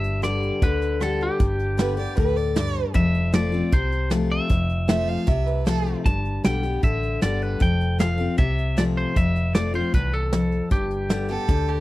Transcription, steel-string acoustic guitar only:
0.00 0.58 G2 medium
0.22 0.60 D3 soft
0.22 0.60 G3 medium
0.22 0.61 B3 medium
0.22 0.61 G4 medium
0.62 0.99 D3 medium
1.00 1.38 D3 medium
1.00 1.38 G3 medium
1.00 1.38 B3 medium
1.00 1.39 G4 medium
1.40 2.14 G2 medium
1.77 1.97 D3 medium
1.77 1.97 G3 medium
1.77 1.97 B3 medium
1.77 1.96 G4 medium
1.97 2.17 B3 medium
1.97 2.16 G4 medium
2.17 2.54 A2 medium
2.56 2.93 G2 medium
2.94 3.69 F2 medium
3.33 3.52 F3 medium
3.33 3.52 A3 medium
3.33 3.53 C4 medium
3.33 3.51 F4 medium
3.52 3.72 C4 medium
3.52 3.71 F4 medium
3.72 4.46 C3 medium
4.10 4.48 F3 medium
4.10 4.48 A3 medium
4.10 4.49 C4 medium
4.10 4.49 F4 medium
4.50 5.24 F2 medium
4.88 5.25 F3 medium
4.88 5.26 A3 medium
4.88 5.26 C4 medium
4.88 5.27 F4 medium
5.27 6.01 C3 medium
5.66 6.03 F3 medium
5.66 6.04 A3 medium
5.66 6.04 C4 medium
5.66 6.04 F4 medium
6.06 6.80 G2 medium
6.44 6.63 D3 medium
6.44 6.63 G3 medium
6.44 6.64 B3 medium
6.44 6.62 G4 medium
6.63 6.83 B3 soft
6.63 6.82 G4 medium
6.83 7.20 D3 medium
7.21 7.59 D3 soft
7.21 7.59 G3 medium
7.21 7.59 B3 medium
7.21 7.60 G4 medium
7.60 8.34 F2 medium
7.99 8.18 F3 medium
7.99 8.18 A3 medium
7.99 8.19 C4 medium
7.99 8.17 F4 medium
8.18 8.38 C4 soft
8.18 8.37 F4 medium
8.38 9.12 C3 medium
8.77 9.14 F3 medium
8.77 9.14 A3 medium
8.77 9.14 C4 medium
8.77 9.15 F4 medium
9.16 9.90 F2 medium
9.55 9.73 F3 medium
9.55 9.74 A3 medium
9.55 9.74 C4 medium
9.55 9.73 F4 medium
9.74 9.94 C4 soft
9.74 9.93 F4 medium
9.94 10.31 E2 medium
10.33 10.69 F2 medium
10.71 11.45 G2 medium
11.10 11.28 D3 medium
11.10 11.29 G3 medium
11.10 11.29 B3 medium
11.10 11.27 G4 medium
11.29 11.49 B3 soft
11.29 11.48 G4 medium
11.49 11.80 D3 medium

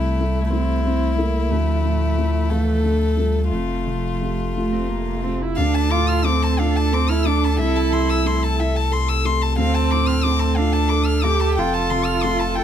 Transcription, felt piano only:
0.00 1.46 C2 soft
0.00 0.39 C3 soft
0.20 0.49 A3 soft
0.20 0.49 E4 soft
0.20 0.49 A4 soft
0.53 0.82 A3 soft
0.53 0.82 E4 soft
0.53 0.82 A4 soft
0.86 1.16 A3 soft
1.18 1.47 A3 soft
1.18 1.47 E4 soft
1.18 1.48 A4 soft
1.51 3.48 D2 medium
1.84 2.37 A2 soft
2.18 2.48 F3 soft
2.18 2.47 A3 soft
2.18 2.48 A4 soft
2.51 2.80 A3 soft
2.51 2.81 A4 soft
2.51 2.81 F5 soft
2.84 3.16 A3 soft
3.17 3.48 A3 soft
3.17 3.48 F4 soft
3.17 3.48 A4 soft
3.51 5.54 F2 soft
3.87 4.42 C3 soft
4.21 4.52 A3 soft
4.21 4.52 F4 soft
4.21 4.52 G4 soft
4.56 4.87 A3 soft
4.56 4.87 F4 soft
4.56 4.87 G4 soft
4.90 5.45 A4 soft
5.25 5.55 A3 soft
5.25 5.55 F4 soft
5.25 5.55 G4 soft
5.60 7.54 D2 medium
5.93 6.46 A2 soft
6.25 6.78 A3 soft
6.60 7.12 F4 soft
6.92 7.45 A4 soft
7.25 7.58 A3 soft
7.57 9.53 C2 medium
7.91 8.44 C3 soft
8.25 8.77 A3 soft
8.60 9.11 E4 soft
8.91 9.44 A4 soft
9.25 9.57 A3 soft
9.57 11.53 D2 medium
9.92 10.44 A2 soft
10.25 10.77 A3 soft
10.59 11.11 F4 soft
10.91 11.44 A4 soft
11.25 11.57 A3 soft
11.57 12.64 F2 medium
11.90 12.43 C3 soft
12.24 12.64 A3 soft
12.56 12.64 F4 medium

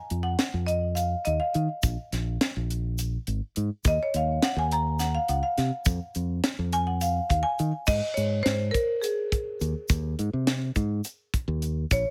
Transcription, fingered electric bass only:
0.11 0.35 F2 medium
0.54 1.14 F2 medium
1.27 1.38 D#2 medium
1.55 1.67 D#3 medium
1.83 1.95 A#1 medium
2.13 2.37 A#1 medium
2.56 3.16 A#1 medium
3.27 3.40 G#1 medium
3.57 3.69 G#2 medium
3.85 3.97 D#2 medium
4.14 4.38 D#2 medium
4.56 5.17 D#2 medium
5.29 5.41 C#2 medium
5.58 5.70 C3 medium
5.86 5.98 F2 loud
6.16 6.40 F2 medium
6.59 7.19 F2 medium
7.30 7.42 D#2 medium
7.60 7.71 D#3 medium
7.88 8.00 G#2 medium
8.17 8.41 G#2 medium
8.46 8.70 G#2 medium
9.61 9.73 D#2 medium
9.90 10.14 D#2 loud
10.19 10.31 G#2 medium
10.33 10.69 C3 medium
10.76 11.00 G#2 loud
11.48 11.84 D#2 medium
11.91 12.03 A#1 medium

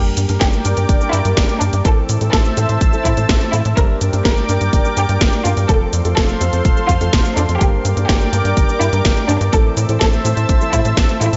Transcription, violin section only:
0.00 0.29 G4 medium
0.41 0.77 G4 medium
1.13 1.49 E4 medium
1.61 1.79 D4 medium
1.85 2.21 A4 medium
2.33 2.69 A4 medium
3.05 3.41 E4 medium
3.53 3.71 E4 medium
3.77 4.13 A#4 medium
4.25 4.61 A#4 medium
4.97 5.33 G4 medium
5.45 5.63 F4 medium
5.69 6.05 A4 medium
6.17 6.53 A4 medium
6.89 7.25 F4 medium
7.37 7.55 D4 medium
7.61 7.97 G4 medium
8.09 8.45 G4 medium
8.81 9.17 E4 medium
9.29 9.47 D4 medium
9.53 9.89 A4 medium
10.01 10.37 A4 medium
10.73 11.09 E4 medium
11.21 11.37 E4 medium

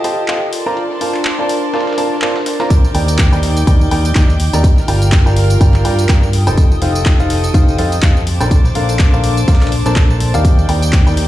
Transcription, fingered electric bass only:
2.95 3.30 D#2 loud
3.32 3.65 D#2 loud
3.67 3.89 D#2 loud
3.91 4.13 D#2 loud
4.16 4.51 D#2 medium
4.53 4.61 D#2 loud
4.88 5.23 G1 medium
5.26 5.59 G1 loud
5.61 5.83 G1 loud
5.85 6.07 G2 loud
6.47 6.80 F1 loud
6.82 7.17 F1 loud
7.20 7.52 F1 loud
7.54 7.76 F1 loud
7.78 8.01 F2 medium
8.03 8.38 F2 loud
8.41 8.73 A#1 loud
8.75 9.10 A#1 loud
9.13 9.46 A#1 loud
9.48 9.83 A#1 medium
9.86 10.31 A#1 medium
10.34 10.67 D#2 loud
10.69 11.04 D#2 loud
11.07 11.28 D#2 loud

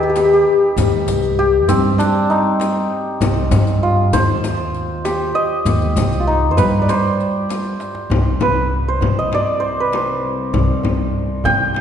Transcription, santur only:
0.00 2.05 D#4 medium
0.00 0.09 G4 medium
0.00 1.74 B4 medium
0.10 0.16 G4 medium
0.17 0.24 G4 medium
0.25 0.33 G4 medium
0.33 1.38 G4 medium
1.39 4.52 G4 medium
1.68 5.68 C4 medium
1.99 2.36 D4 medium
2.30 5.91 D#4 medium
3.83 6.20 F4 medium
4.13 6.51 C5 loud
5.05 8.18 G4 medium
5.35 6.88 D#5 medium
6.20 9.57 F4 soft
6.27 6.88 D#4 medium
6.51 6.63 C5 medium
6.57 6.95 B4 medium
6.82 9.25 D5 medium
6.89 8.48 C5 medium
8.42 8.94 B4 medium
8.88 9.60 C5 medium
9.19 9.41 D#5 medium
9.35 11.80 D5 medium
9.60 9.86 C5 medium
9.80 10.01 B4 medium
9.95 11.81 C5 medium
11.45 11.81 G5 loud

